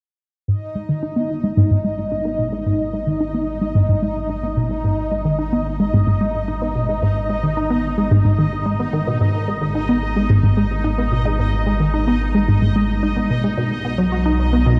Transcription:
0.48 9.18 G#1 medium
0.48 0.61 G#2 medium
0.48 14.80 D#4 medium
0.48 14.80 D#5 medium
0.75 0.84 G#3 medium
0.89 0.97 D#3 medium
1.03 1.08 D#4 medium
1.16 1.25 B3 medium
1.44 1.49 G#3 medium
1.57 1.62 G#2 medium
1.71 1.76 G#2 medium
1.84 1.93 G#3 medium
2.12 2.17 D#4 medium
2.25 2.34 B3 medium
2.39 2.51 B2 medium
2.52 2.58 G#3 medium
2.66 2.79 G#2 medium
2.93 3.02 G#3 medium
3.07 3.15 D#3 medium
3.21 3.26 D#4 medium
3.34 3.43 B3 medium
3.61 3.67 G#3 medium
3.75 3.80 G#2 medium
3.89 3.94 G#2 medium
4.02 4.11 G#3 medium
4.30 4.35 D#4 medium
4.43 4.52 B3 medium
4.57 4.69 B2 medium
4.71 4.76 G#3 medium
4.84 4.97 G#2 medium
5.12 5.20 G#3 medium
5.25 5.34 D#3 medium
5.39 5.44 D#4 medium
5.53 5.61 B3 medium
5.80 5.85 G#3 medium
5.94 5.99 G#2 medium
6.07 6.12 G#2 medium
6.21 6.29 G#3 medium
6.48 6.53 D#4 medium
6.62 6.70 B3 medium
6.75 6.88 B2 medium
6.89 6.94 G#3 medium
7.03 7.15 G#2 medium
7.30 7.38 G#3 medium
7.43 7.52 D#3 medium
7.57 7.62 D#4 medium
7.70 7.79 B3 medium
7.98 8.03 G#3 medium
8.11 8.17 G#2 loud
8.25 8.30 G#2 medium
8.39 8.47 D#3 medium
8.66 8.71 G#3 medium
8.80 8.85 B3 medium
8.93 9.06 D#3 medium
9.07 9.16 B2 medium
9.21 13.55 G#1 medium
9.21 9.33 G#2 medium
9.48 9.56 G#3 medium
9.62 9.70 D#3 medium
9.75 9.80 D#4 medium
9.89 9.97 B3 medium
10.16 10.21 G#3 medium
10.30 10.35 G#2 loud
10.43 10.48 G#2 medium
10.57 10.65 G#3 medium
10.84 10.89 D#4 medium
10.98 11.07 B3 medium
11.12 11.24 B2 medium
11.25 11.30 G#3 medium
11.39 11.52 G#2 medium
11.66 11.75 G#3 medium
11.80 11.88 D#3 medium
11.94 11.99 D#4 medium
12.07 12.16 B3 medium
12.35 12.40 G#3 medium
12.48 12.53 G#2 medium
12.62 12.67 G#2 medium
12.76 12.84 G#3 medium
13.03 13.08 D#4 medium
13.17 13.25 B3 medium
13.30 13.43 B2 medium
13.44 13.49 G#3 medium
13.57 14.80 B1 medium
13.57 13.70 B2 medium
13.85 13.93 B3 medium
13.98 14.07 F#3 medium
14.12 14.17 F#4 medium
14.26 14.34 D#4 medium
14.53 14.58 B3 medium
14.66 14.71 B2 medium

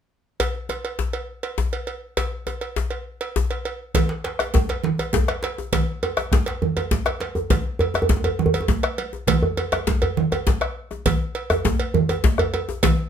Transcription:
0.40 cowbell medium
0.40 djembe slap medium
0.40 djembe bass medium
0.55 djembe slap soft
0.69 cowbell soft
0.69 djembe slap soft
0.69 djembe tone medium
0.85 cowbell soft
0.99 djembe slap medium
0.99 djembe bass medium
1.13 cowbell soft
1.43 cowbell soft
1.58 djembe slap medium
1.58 djembe tone medium
1.58 djembe bass medium
1.73 cowbell soft
1.87 cowbell soft
2.17 cowbell soft
2.17 djembe slap medium
2.17 djembe bass medium
2.32 djembe slap soft
2.47 cowbell soft
2.47 djembe slap soft
2.47 djembe tone medium
2.61 cowbell soft
2.76 djembe slap medium
2.76 djembe bass medium
2.90 cowbell soft
3.21 cowbell soft
3.36 djembe slap medium
3.36 djembe tone medium
3.36 djembe bass medium
3.51 cowbell soft
3.65 cowbell soft
3.94 bombo low medium
3.94 cowbell medium
3.94 djembe slap medium
3.94 high conga medium
3.94 djembe tone medium
3.94 low conga medium
3.94 djembe bass medium
4.09 djembe slap medium
4.24 cowbell soft
4.24 djembe slap medium
4.39 bombo rim medium
4.39 cowbell soft
4.39 high conga soft
4.39 djembe tone medium
4.54 bombo rim soft
4.54 bombo low loud
4.54 djembe slap medium
4.54 high conga medium
4.54 djembe tone medium
4.54 djembe bass medium
4.69 cowbell soft
4.69 djembe slap medium
4.84 djembe slap medium
4.84 low conga medium
4.98 cowbell medium
4.98 high conga soft
4.98 djembe tone medium
5.13 bombo low medium
5.13 djembe slap medium
5.13 high conga medium
5.13 djembe tone medium
5.13 djembe bass medium
5.28 bombo rim medium
5.28 cowbell soft
5.28 djembe slap medium
5.43 cowbell medium
5.43 djembe slap medium
5.43 djembe slap soft
5.43 high conga soft
5.58 djembe tone medium
5.72 bombo low medium
5.72 cowbell medium
5.72 djembe slap medium
5.72 high conga medium
5.72 low conga medium
5.72 djembe bass medium
6.03 cowbell soft
6.03 djembe tone medium
6.17 bombo rim medium
6.17 cowbell soft
6.17 djembe tone medium
6.17 high conga soft
6.32 bombo rim soft
6.32 bombo low loud
6.32 djembe slap medium
6.32 high conga medium
6.32 djembe bass medium
6.46 cowbell soft
6.46 djembe slap medium
6.62 djembe bass medium
6.62 low conga medium
6.77 cowbell soft
6.77 djembe tone soft
6.77 djembe tone medium
6.91 bombo low medium
6.91 djembe slap medium
6.91 high conga medium
6.91 djembe bass medium
7.06 bombo rim medium
7.06 cowbell soft
7.06 djembe slap medium
7.20 cowbell soft
7.20 djembe slap medium
7.20 djembe slap soft
7.20 high conga soft
7.35 djembe tone soft
7.35 djembe bass medium
7.50 bombo low medium
7.50 cowbell medium
7.50 djembe slap medium
7.50 high conga medium
7.50 djembe bass medium
7.50 low conga medium
7.79 cowbell soft
7.79 djembe bass loud
7.94 bombo rim medium
7.94 cowbell soft
7.94 djembe tone medium
7.94 high conga soft
8.02 djembe bass medium
8.09 bombo rim soft
8.09 bombo low loud
8.09 djembe slap medium
8.09 high conga medium
8.09 djembe bass medium
8.17 djembe tone medium
8.24 cowbell soft
8.24 djembe bass medium
8.39 djembe tone medium
8.39 low conga medium
8.46 djembe bass medium
8.54 cowbell medium
8.54 djembe tone soft
8.54 high conga soft
8.61 djembe tone medium
8.68 bombo low medium
8.68 djembe slap medium
8.68 high conga medium
8.68 djembe bass medium
8.83 bombo rim medium
8.83 cowbell soft
8.98 cowbell medium
8.98 djembe slap soft
8.98 high conga soft
9.13 djembe tone medium
9.27 bombo low medium
9.27 cowbell medium
9.27 djembe slap medium
9.27 high conga medium
9.27 djembe bass medium
9.27 low conga medium
9.43 bombo rim soft
9.43 djembe bass medium
9.57 cowbell soft
9.57 djembe tone medium
9.72 bombo rim medium
9.72 cowbell medium
9.72 djembe tone medium
9.72 high conga soft
9.87 bombo low medium
9.87 djembe slap medium
9.87 high conga medium
9.87 djembe bass medium
10.02 cowbell medium
10.02 djembe bass medium
10.17 djembe tone medium
10.17 high conga soft
10.17 low conga medium
10.32 bombo rim soft
10.32 cowbell soft
10.32 djembe slap soft
10.32 djembe tone medium
10.32 high conga soft
10.47 bombo low medium
10.47 djembe slap medium
10.47 high conga medium
10.47 djembe bass medium
10.61 bombo rim medium
10.61 cowbell soft
10.91 bombo rim soft
10.91 high conga soft
10.91 djembe tone medium
11.06 bombo low medium
11.06 cowbell medium
11.06 djembe slap medium
11.06 high conga medium
11.06 low conga medium
11.06 djembe bass medium
11.35 cowbell soft
11.50 bombo rim medium
11.50 cowbell soft
11.50 high conga soft
11.50 djembe tone medium
11.50 djembe bass medium
11.65 bombo low medium
11.65 djembe slap medium
11.65 high conga medium
11.65 djembe tone medium
11.65 djembe bass medium
11.80 cowbell medium
11.94 djembe bass medium
11.94 low conga medium
12.09 cowbell soft
12.09 djembe tone medium
12.09 high conga soft
12.09 djembe tone medium
12.24 bombo low medium
12.24 djembe slap medium
12.24 high conga medium
12.24 djembe bass medium
12.38 bombo rim medium
12.38 cowbell soft
12.38 djembe bass medium
12.54 cowbell soft
12.54 djembe slap soft
12.54 high conga soft
12.54 djembe tone medium
12.69 djembe tone medium
12.83 bombo low medium
12.83 cowbell medium
12.83 djembe slap medium
12.83 high conga medium
12.83 low conga medium
12.83 djembe bass medium

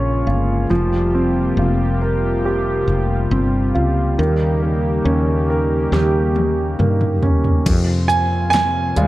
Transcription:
0.00 0.23 A#1 medium
0.00 0.67 C#3 medium
0.00 0.66 F3 medium
0.00 0.66 G#3 medium
0.00 4.14 A#3 medium
0.00 0.68 C#4 soft
0.00 0.27 F4 soft
0.00 4.14 F4 medium
0.00 0.66 G#4 medium
0.00 0.72 C#5 medium
0.00 0.72 G#5 medium
0.27 0.67 G1 medium
0.27 0.69 F4 soft
0.69 1.53 F1 medium
0.69 4.14 C3 medium
0.69 4.14 F3 medium
0.69 7.61 G3 medium
0.69 4.14 G4 medium
1.14 2.84 C4 soft
1.57 2.83 F1 medium
1.57 3.28 F4 soft
2.02 3.71 A#4 soft
2.45 4.15 G4 soft
2.88 3.28 F1 medium
3.31 3.72 G1 medium
3.31 4.16 C4 soft
3.75 4.15 C#2 medium
3.75 4.17 F4 soft
4.18 5.01 D#2 medium
4.18 7.63 C#3 medium
4.18 7.62 D#3 medium
4.18 7.63 A#3 medium
4.18 7.63 D#4 medium
4.18 7.63 G4 medium
4.62 6.32 A#3 soft
5.05 5.88 D#2 medium
5.05 6.75 C#4 soft
5.50 7.19 A#4 medium
5.92 6.75 D#2 medium
5.92 7.62 G4 soft
5.92 snare soft
6.36 high tom medium
6.79 7.22 G2 medium
6.79 7.64 A#3 soft
6.79 mid tom medium
7.01 mid tom medium
7.22 7.63 D#2 medium
7.22 7.65 C#4 soft
7.22 floor tom medium
7.44 floor tom medium
7.66 8.92 F2 medium
7.66 9.07 C3 medium
7.66 9.07 F3 medium
7.66 9.07 C4 medium
7.66 9.07 F4 medium
7.66 kick loud
7.66 closed hi-hat medium
7.66 crash medium
8.08 8.49 G#5 medium
8.08 closed hi-hat medium
8.50 9.07 G#5 loud
8.50 closed hi-hat medium
8.54 snare medium
8.96 9.07 D#2 medium
8.96 9.07 G3 medium
8.96 9.07 G#3 medium
8.96 9.07 F4 medium
8.96 closed hi-hat medium

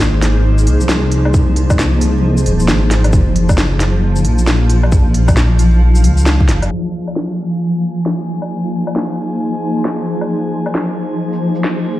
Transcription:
0.00 0.68 G#1 loud
0.00 12.00 F3 loud
0.00 6.71 A#3 medium
0.00 6.71 D#4 medium
0.00 6.71 G#4 medium
0.00 6.71 C5 medium
0.00 snare loud
0.00 shaker medium
0.22 snare medium
0.22 open hi-hat medium
0.22 shaker soft
0.58 shaker medium
0.67 2.47 C2 medium
0.67 open hi-hat medium
0.81 shaker medium
0.89 snare loud
0.89 shaker medium
1.12 open hi-hat medium
1.25 low woodblock soft
1.34 kick loud
1.34 shaker medium
1.56 open hi-hat medium
1.70 kick loud
1.70 low woodblock medium
1.70 shaker medium
1.79 snare loud
1.79 shaker medium
2.01 open hi-hat medium
2.01 shaker soft
2.37 shaker medium
2.46 2.70 D#1 loud
2.46 open hi-hat medium
2.60 shaker medium
2.68 3.12 G#1 medium
2.68 snare loud
2.68 shaker medium
2.91 snare medium
2.91 open hi-hat medium
2.91 shaker soft
3.04 open hi-hat soft
3.04 low woodblock soft
3.13 4.26 F#1 loud
3.13 kick loud
3.13 shaker medium
3.36 open hi-hat medium
3.49 kick loud
3.49 low woodblock medium
3.49 shaker medium
3.58 snare loud
3.58 shaker medium
3.80 snare medium
3.80 open hi-hat medium
3.80 shaker soft
4.16 shaker medium
4.25 6.06 A#1 medium
4.25 open hi-hat medium
4.38 shaker medium
4.47 snare loud
4.47 shaker medium
4.70 open hi-hat medium
4.83 low woodblock soft
4.92 kick loud
4.92 shaker medium
5.14 open hi-hat medium
5.28 kick loud
5.28 low woodblock medium
5.28 shaker medium
5.37 snare loud
5.37 shaker medium
5.59 open hi-hat medium
5.59 shaker soft
5.95 shaker medium
6.04 6.50 C#2 loud
6.04 open hi-hat medium
6.18 shaker medium
6.26 snare loud
6.26 shaker medium
6.40 kick medium
6.49 6.70 F#1 loud
6.49 snare medium
6.49 open hi-hat medium
6.49 shaker soft
6.62 open hi-hat soft
6.62 low woodblock soft
6.72 12.00 G#5 medium
6.89 12.00 A#3 medium
7.07 low woodblock soft
7.07 shaker soft
7.14 12.00 G#4 medium
7.14 12.00 C5 medium
7.14 snare medium
7.24 12.00 D#4 medium
7.75 shaker medium
7.97 shaker medium
8.06 snare medium
8.42 low woodblock soft
8.51 shaker medium
8.87 low woodblock soft
8.87 shaker medium
8.96 snare loud
9.54 shaker medium
9.77 shaker medium
9.85 snare loud
9.85 shaker medium
10.21 low woodblock soft
10.30 shaker soft
10.66 low woodblock soft
10.66 shaker medium
10.75 snare loud
10.75 shaker soft
11.33 shaker medium
11.55 shaker medium
11.64 snare loud
11.64 shaker medium

